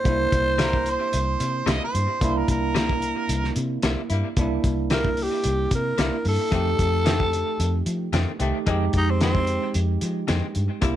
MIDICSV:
0, 0, Header, 1, 7, 480
1, 0, Start_track
1, 0, Tempo, 538600
1, 52, Time_signature, 4, 2, 24, 8
1, 9768, End_track
2, 0, Start_track
2, 0, Title_t, "Harmonica"
2, 0, Program_c, 0, 22
2, 558, Note_on_c, 0, 70, 86
2, 802, Note_on_c, 0, 72, 74
2, 816, Note_off_c, 0, 70, 0
2, 1527, Note_on_c, 0, 75, 68
2, 1541, Note_off_c, 0, 72, 0
2, 1628, Note_off_c, 0, 75, 0
2, 1643, Note_on_c, 0, 72, 90
2, 2119, Note_on_c, 0, 70, 65
2, 2133, Note_off_c, 0, 72, 0
2, 2217, Note_off_c, 0, 70, 0
2, 2235, Note_on_c, 0, 70, 84
2, 3157, Note_off_c, 0, 70, 0
2, 9768, End_track
3, 0, Start_track
3, 0, Title_t, "Tenor saxophone"
3, 0, Program_c, 1, 66
3, 0, Note_on_c, 1, 72, 93
3, 1233, Note_off_c, 1, 72, 0
3, 4398, Note_on_c, 1, 70, 84
3, 4659, Note_on_c, 1, 67, 78
3, 4672, Note_off_c, 1, 70, 0
3, 5103, Note_off_c, 1, 67, 0
3, 5124, Note_on_c, 1, 70, 67
3, 5575, Note_off_c, 1, 70, 0
3, 5602, Note_on_c, 1, 69, 89
3, 6991, Note_off_c, 1, 69, 0
3, 7997, Note_on_c, 1, 63, 87
3, 8114, Note_on_c, 1, 60, 72
3, 8127, Note_off_c, 1, 63, 0
3, 8213, Note_off_c, 1, 60, 0
3, 8222, Note_on_c, 1, 60, 88
3, 8682, Note_off_c, 1, 60, 0
3, 9768, End_track
4, 0, Start_track
4, 0, Title_t, "Tine electric piano"
4, 0, Program_c, 2, 4
4, 36, Note_on_c, 2, 58, 60
4, 51, Note_on_c, 2, 62, 56
4, 70, Note_on_c, 2, 64, 71
4, 1931, Note_off_c, 2, 58, 0
4, 1938, Note_off_c, 2, 62, 0
4, 1948, Note_off_c, 2, 64, 0
4, 1969, Note_on_c, 2, 58, 78
4, 1983, Note_on_c, 2, 62, 71
4, 1997, Note_on_c, 2, 64, 89
4, 3857, Note_off_c, 2, 58, 0
4, 3864, Note_off_c, 2, 62, 0
4, 3871, Note_off_c, 2, 64, 0
4, 3898, Note_on_c, 2, 58, 68
4, 3910, Note_on_c, 2, 62, 68
4, 3930, Note_on_c, 2, 64, 74
4, 5307, Note_off_c, 2, 58, 0
4, 5314, Note_off_c, 2, 62, 0
4, 5324, Note_off_c, 2, 64, 0
4, 5331, Note_on_c, 2, 58, 39
4, 5341, Note_on_c, 2, 62, 38
4, 5348, Note_on_c, 2, 64, 46
4, 5806, Note_on_c, 2, 57, 60
4, 5812, Note_off_c, 2, 58, 0
4, 5817, Note_off_c, 2, 62, 0
4, 5821, Note_off_c, 2, 64, 0
4, 5821, Note_on_c, 2, 63, 55
4, 5839, Note_on_c, 2, 67, 67
4, 7455, Note_off_c, 2, 57, 0
4, 7463, Note_off_c, 2, 63, 0
4, 7472, Note_off_c, 2, 67, 0
4, 7478, Note_on_c, 2, 57, 53
4, 7488, Note_on_c, 2, 63, 46
4, 7494, Note_on_c, 2, 67, 63
4, 7721, Note_on_c, 2, 56, 73
4, 7722, Note_off_c, 2, 63, 0
4, 7725, Note_off_c, 2, 57, 0
4, 7733, Note_off_c, 2, 67, 0
4, 7733, Note_on_c, 2, 63, 66
4, 7754, Note_on_c, 2, 67, 78
4, 9610, Note_off_c, 2, 56, 0
4, 9615, Note_off_c, 2, 63, 0
4, 9626, Note_off_c, 2, 67, 0
4, 9637, Note_on_c, 2, 58, 68
4, 9650, Note_on_c, 2, 62, 61
4, 9671, Note_on_c, 2, 64, 79
4, 9768, Note_off_c, 2, 58, 0
4, 9768, Note_off_c, 2, 62, 0
4, 9768, Note_off_c, 2, 64, 0
4, 9768, End_track
5, 0, Start_track
5, 0, Title_t, "Clean electric guitar"
5, 0, Program_c, 3, 27
5, 520, Note_on_c, 3, 48, 87
5, 526, Note_on_c, 3, 55, 91
5, 536, Note_on_c, 3, 58, 86
5, 538, Note_on_c, 3, 64, 88
5, 674, Note_off_c, 3, 48, 0
5, 677, Note_off_c, 3, 55, 0
5, 682, Note_off_c, 3, 58, 0
5, 684, Note_off_c, 3, 64, 0
5, 1483, Note_on_c, 3, 48, 84
5, 1492, Note_on_c, 3, 55, 85
5, 1500, Note_on_c, 3, 58, 85
5, 1505, Note_on_c, 3, 64, 99
5, 1637, Note_off_c, 3, 48, 0
5, 1641, Note_off_c, 3, 55, 0
5, 1645, Note_off_c, 3, 58, 0
5, 1648, Note_off_c, 3, 64, 0
5, 2449, Note_on_c, 3, 48, 98
5, 2458, Note_on_c, 3, 55, 84
5, 2464, Note_on_c, 3, 58, 97
5, 2469, Note_on_c, 3, 64, 92
5, 2600, Note_off_c, 3, 48, 0
5, 2605, Note_off_c, 3, 55, 0
5, 2608, Note_off_c, 3, 58, 0
5, 2610, Note_off_c, 3, 64, 0
5, 3415, Note_on_c, 3, 48, 82
5, 3426, Note_on_c, 3, 55, 84
5, 3431, Note_on_c, 3, 58, 92
5, 3440, Note_on_c, 3, 64, 94
5, 3563, Note_off_c, 3, 48, 0
5, 3569, Note_off_c, 3, 55, 0
5, 3571, Note_off_c, 3, 58, 0
5, 3575, Note_off_c, 3, 64, 0
5, 3652, Note_on_c, 3, 64, 57
5, 3672, Note_on_c, 3, 58, 43
5, 3685, Note_on_c, 3, 55, 38
5, 3802, Note_off_c, 3, 64, 0
5, 3812, Note_off_c, 3, 58, 0
5, 3818, Note_off_c, 3, 55, 0
5, 4372, Note_on_c, 3, 48, 69
5, 4383, Note_on_c, 3, 55, 88
5, 4394, Note_on_c, 3, 58, 80
5, 4394, Note_on_c, 3, 64, 94
5, 4522, Note_off_c, 3, 48, 0
5, 4527, Note_off_c, 3, 55, 0
5, 4532, Note_off_c, 3, 58, 0
5, 4533, Note_off_c, 3, 64, 0
5, 5330, Note_on_c, 3, 48, 69
5, 5342, Note_on_c, 3, 55, 78
5, 5347, Note_on_c, 3, 58, 74
5, 5354, Note_on_c, 3, 64, 79
5, 5480, Note_off_c, 3, 48, 0
5, 5486, Note_off_c, 3, 55, 0
5, 5489, Note_off_c, 3, 58, 0
5, 5492, Note_off_c, 3, 64, 0
5, 5807, Note_on_c, 3, 41, 72
5, 5812, Note_on_c, 3, 51, 69
5, 5820, Note_on_c, 3, 57, 72
5, 5827, Note_on_c, 3, 60, 77
5, 5959, Note_off_c, 3, 41, 0
5, 5961, Note_off_c, 3, 51, 0
5, 5965, Note_off_c, 3, 57, 0
5, 5968, Note_off_c, 3, 60, 0
5, 6286, Note_on_c, 3, 41, 80
5, 6294, Note_on_c, 3, 51, 86
5, 6300, Note_on_c, 3, 57, 94
5, 6306, Note_on_c, 3, 60, 86
5, 6438, Note_off_c, 3, 41, 0
5, 6442, Note_off_c, 3, 51, 0
5, 6445, Note_off_c, 3, 57, 0
5, 6448, Note_off_c, 3, 60, 0
5, 7245, Note_on_c, 3, 41, 76
5, 7255, Note_on_c, 3, 51, 83
5, 7259, Note_on_c, 3, 57, 76
5, 7265, Note_on_c, 3, 60, 86
5, 7397, Note_off_c, 3, 41, 0
5, 7402, Note_off_c, 3, 51, 0
5, 7404, Note_off_c, 3, 57, 0
5, 7407, Note_off_c, 3, 60, 0
5, 7483, Note_on_c, 3, 60, 49
5, 7500, Note_on_c, 3, 57, 52
5, 7511, Note_on_c, 3, 51, 40
5, 7636, Note_off_c, 3, 60, 0
5, 7644, Note_off_c, 3, 57, 0
5, 7650, Note_off_c, 3, 51, 0
5, 7721, Note_on_c, 3, 41, 77
5, 7728, Note_on_c, 3, 51, 94
5, 7733, Note_on_c, 3, 56, 99
5, 7741, Note_on_c, 3, 60, 97
5, 7875, Note_off_c, 3, 41, 0
5, 7878, Note_off_c, 3, 51, 0
5, 7881, Note_off_c, 3, 56, 0
5, 7885, Note_off_c, 3, 60, 0
5, 8210, Note_on_c, 3, 41, 80
5, 8217, Note_on_c, 3, 51, 81
5, 8224, Note_on_c, 3, 56, 82
5, 8228, Note_on_c, 3, 60, 79
5, 8359, Note_off_c, 3, 41, 0
5, 8363, Note_off_c, 3, 51, 0
5, 8366, Note_off_c, 3, 56, 0
5, 8368, Note_off_c, 3, 60, 0
5, 9159, Note_on_c, 3, 41, 77
5, 9166, Note_on_c, 3, 51, 88
5, 9172, Note_on_c, 3, 56, 93
5, 9180, Note_on_c, 3, 60, 91
5, 9313, Note_off_c, 3, 41, 0
5, 9317, Note_off_c, 3, 51, 0
5, 9320, Note_off_c, 3, 56, 0
5, 9324, Note_off_c, 3, 60, 0
5, 9642, Note_on_c, 3, 48, 90
5, 9653, Note_on_c, 3, 55, 93
5, 9657, Note_on_c, 3, 58, 83
5, 9664, Note_on_c, 3, 64, 102
5, 9768, Note_off_c, 3, 48, 0
5, 9768, Note_off_c, 3, 55, 0
5, 9768, Note_off_c, 3, 58, 0
5, 9768, Note_off_c, 3, 64, 0
5, 9768, End_track
6, 0, Start_track
6, 0, Title_t, "Fingered electric bass"
6, 0, Program_c, 4, 33
6, 46, Note_on_c, 4, 36, 94
6, 236, Note_off_c, 4, 36, 0
6, 287, Note_on_c, 4, 36, 83
6, 851, Note_off_c, 4, 36, 0
6, 1014, Note_on_c, 4, 36, 92
6, 1201, Note_off_c, 4, 36, 0
6, 1251, Note_on_c, 4, 48, 77
6, 1439, Note_off_c, 4, 48, 0
6, 1492, Note_on_c, 4, 36, 86
6, 1590, Note_off_c, 4, 36, 0
6, 1735, Note_on_c, 4, 43, 102
6, 1832, Note_off_c, 4, 43, 0
6, 1972, Note_on_c, 4, 36, 88
6, 2160, Note_off_c, 4, 36, 0
6, 2213, Note_on_c, 4, 36, 76
6, 2775, Note_off_c, 4, 36, 0
6, 2933, Note_on_c, 4, 36, 91
6, 3121, Note_off_c, 4, 36, 0
6, 3175, Note_on_c, 4, 48, 88
6, 3362, Note_off_c, 4, 48, 0
6, 3417, Note_on_c, 4, 36, 96
6, 3514, Note_off_c, 4, 36, 0
6, 3657, Note_on_c, 4, 43, 96
6, 3754, Note_off_c, 4, 43, 0
6, 3891, Note_on_c, 4, 36, 79
6, 4080, Note_off_c, 4, 36, 0
6, 4135, Note_on_c, 4, 36, 76
6, 4696, Note_off_c, 4, 36, 0
6, 4859, Note_on_c, 4, 36, 98
6, 5044, Note_off_c, 4, 36, 0
6, 5091, Note_on_c, 4, 48, 84
6, 5280, Note_off_c, 4, 48, 0
6, 5333, Note_on_c, 4, 36, 76
6, 5431, Note_off_c, 4, 36, 0
6, 5574, Note_on_c, 4, 43, 102
6, 5672, Note_off_c, 4, 43, 0
6, 5810, Note_on_c, 4, 41, 82
6, 5998, Note_off_c, 4, 41, 0
6, 6051, Note_on_c, 4, 41, 80
6, 6614, Note_off_c, 4, 41, 0
6, 6770, Note_on_c, 4, 41, 94
6, 6959, Note_off_c, 4, 41, 0
6, 7007, Note_on_c, 4, 53, 79
6, 7197, Note_off_c, 4, 53, 0
6, 7245, Note_on_c, 4, 41, 84
6, 7346, Note_off_c, 4, 41, 0
6, 7488, Note_on_c, 4, 36, 91
6, 7587, Note_off_c, 4, 36, 0
6, 7726, Note_on_c, 4, 41, 89
6, 7915, Note_off_c, 4, 41, 0
6, 7962, Note_on_c, 4, 41, 89
6, 8528, Note_off_c, 4, 41, 0
6, 8690, Note_on_c, 4, 41, 85
6, 8878, Note_off_c, 4, 41, 0
6, 8929, Note_on_c, 4, 53, 70
6, 9117, Note_off_c, 4, 53, 0
6, 9172, Note_on_c, 4, 41, 96
6, 9269, Note_off_c, 4, 41, 0
6, 9411, Note_on_c, 4, 43, 106
6, 9508, Note_off_c, 4, 43, 0
6, 9643, Note_on_c, 4, 36, 85
6, 9768, Note_off_c, 4, 36, 0
6, 9768, End_track
7, 0, Start_track
7, 0, Title_t, "Drums"
7, 47, Note_on_c, 9, 36, 105
7, 48, Note_on_c, 9, 42, 69
7, 136, Note_off_c, 9, 36, 0
7, 137, Note_off_c, 9, 42, 0
7, 288, Note_on_c, 9, 36, 81
7, 289, Note_on_c, 9, 42, 60
7, 377, Note_off_c, 9, 36, 0
7, 378, Note_off_c, 9, 42, 0
7, 525, Note_on_c, 9, 42, 76
7, 533, Note_on_c, 9, 38, 93
7, 614, Note_off_c, 9, 42, 0
7, 622, Note_off_c, 9, 38, 0
7, 654, Note_on_c, 9, 36, 75
7, 743, Note_off_c, 9, 36, 0
7, 766, Note_on_c, 9, 42, 51
7, 855, Note_off_c, 9, 42, 0
7, 1007, Note_on_c, 9, 42, 79
7, 1096, Note_off_c, 9, 42, 0
7, 1249, Note_on_c, 9, 42, 71
7, 1338, Note_off_c, 9, 42, 0
7, 1492, Note_on_c, 9, 42, 79
7, 1500, Note_on_c, 9, 38, 106
7, 1581, Note_off_c, 9, 42, 0
7, 1589, Note_off_c, 9, 38, 0
7, 1736, Note_on_c, 9, 42, 64
7, 1825, Note_off_c, 9, 42, 0
7, 1973, Note_on_c, 9, 36, 94
7, 1975, Note_on_c, 9, 42, 83
7, 2062, Note_off_c, 9, 36, 0
7, 2064, Note_off_c, 9, 42, 0
7, 2213, Note_on_c, 9, 36, 72
7, 2213, Note_on_c, 9, 42, 66
7, 2302, Note_off_c, 9, 36, 0
7, 2302, Note_off_c, 9, 42, 0
7, 2457, Note_on_c, 9, 42, 70
7, 2465, Note_on_c, 9, 38, 95
7, 2546, Note_off_c, 9, 42, 0
7, 2554, Note_off_c, 9, 38, 0
7, 2579, Note_on_c, 9, 36, 76
7, 2669, Note_off_c, 9, 36, 0
7, 2692, Note_on_c, 9, 42, 50
7, 2781, Note_off_c, 9, 42, 0
7, 2933, Note_on_c, 9, 42, 80
7, 3023, Note_off_c, 9, 42, 0
7, 3066, Note_on_c, 9, 38, 34
7, 3155, Note_off_c, 9, 38, 0
7, 3170, Note_on_c, 9, 42, 58
7, 3260, Note_off_c, 9, 42, 0
7, 3409, Note_on_c, 9, 42, 78
7, 3417, Note_on_c, 9, 38, 105
7, 3498, Note_off_c, 9, 42, 0
7, 3506, Note_off_c, 9, 38, 0
7, 3651, Note_on_c, 9, 42, 59
7, 3740, Note_off_c, 9, 42, 0
7, 3891, Note_on_c, 9, 42, 67
7, 3893, Note_on_c, 9, 36, 97
7, 3980, Note_off_c, 9, 42, 0
7, 3982, Note_off_c, 9, 36, 0
7, 4134, Note_on_c, 9, 36, 80
7, 4135, Note_on_c, 9, 42, 54
7, 4223, Note_off_c, 9, 36, 0
7, 4224, Note_off_c, 9, 42, 0
7, 4367, Note_on_c, 9, 42, 64
7, 4375, Note_on_c, 9, 38, 94
7, 4457, Note_off_c, 9, 42, 0
7, 4465, Note_off_c, 9, 38, 0
7, 4497, Note_on_c, 9, 36, 86
7, 4586, Note_off_c, 9, 36, 0
7, 4608, Note_on_c, 9, 46, 62
7, 4697, Note_off_c, 9, 46, 0
7, 4845, Note_on_c, 9, 42, 82
7, 4934, Note_off_c, 9, 42, 0
7, 5089, Note_on_c, 9, 42, 67
7, 5091, Note_on_c, 9, 36, 86
7, 5178, Note_off_c, 9, 42, 0
7, 5180, Note_off_c, 9, 36, 0
7, 5330, Note_on_c, 9, 42, 78
7, 5338, Note_on_c, 9, 38, 95
7, 5420, Note_off_c, 9, 42, 0
7, 5428, Note_off_c, 9, 38, 0
7, 5569, Note_on_c, 9, 46, 70
7, 5658, Note_off_c, 9, 46, 0
7, 5810, Note_on_c, 9, 42, 77
7, 5811, Note_on_c, 9, 36, 95
7, 5900, Note_off_c, 9, 36, 0
7, 5900, Note_off_c, 9, 42, 0
7, 6052, Note_on_c, 9, 36, 85
7, 6052, Note_on_c, 9, 42, 63
7, 6141, Note_off_c, 9, 36, 0
7, 6141, Note_off_c, 9, 42, 0
7, 6290, Note_on_c, 9, 42, 72
7, 6298, Note_on_c, 9, 38, 91
7, 6379, Note_off_c, 9, 42, 0
7, 6387, Note_off_c, 9, 38, 0
7, 6416, Note_on_c, 9, 36, 82
7, 6506, Note_off_c, 9, 36, 0
7, 6534, Note_on_c, 9, 42, 58
7, 6623, Note_off_c, 9, 42, 0
7, 6771, Note_on_c, 9, 42, 73
7, 6861, Note_off_c, 9, 42, 0
7, 7006, Note_on_c, 9, 42, 64
7, 7095, Note_off_c, 9, 42, 0
7, 7246, Note_on_c, 9, 42, 70
7, 7254, Note_on_c, 9, 38, 94
7, 7335, Note_off_c, 9, 42, 0
7, 7343, Note_off_c, 9, 38, 0
7, 7484, Note_on_c, 9, 42, 56
7, 7573, Note_off_c, 9, 42, 0
7, 7723, Note_on_c, 9, 42, 71
7, 7726, Note_on_c, 9, 36, 94
7, 7812, Note_off_c, 9, 42, 0
7, 7815, Note_off_c, 9, 36, 0
7, 7959, Note_on_c, 9, 42, 54
7, 7964, Note_on_c, 9, 36, 85
7, 8048, Note_off_c, 9, 42, 0
7, 8053, Note_off_c, 9, 36, 0
7, 8203, Note_on_c, 9, 42, 71
7, 8212, Note_on_c, 9, 38, 100
7, 8293, Note_off_c, 9, 42, 0
7, 8301, Note_off_c, 9, 38, 0
7, 8330, Note_on_c, 9, 36, 87
7, 8419, Note_off_c, 9, 36, 0
7, 8442, Note_on_c, 9, 42, 51
7, 8531, Note_off_c, 9, 42, 0
7, 8683, Note_on_c, 9, 42, 73
7, 8772, Note_off_c, 9, 42, 0
7, 8923, Note_on_c, 9, 42, 66
7, 9013, Note_off_c, 9, 42, 0
7, 9162, Note_on_c, 9, 42, 71
7, 9170, Note_on_c, 9, 38, 94
7, 9251, Note_off_c, 9, 42, 0
7, 9259, Note_off_c, 9, 38, 0
7, 9400, Note_on_c, 9, 42, 61
7, 9489, Note_off_c, 9, 42, 0
7, 9640, Note_on_c, 9, 42, 82
7, 9644, Note_on_c, 9, 36, 104
7, 9729, Note_off_c, 9, 42, 0
7, 9733, Note_off_c, 9, 36, 0
7, 9768, End_track
0, 0, End_of_file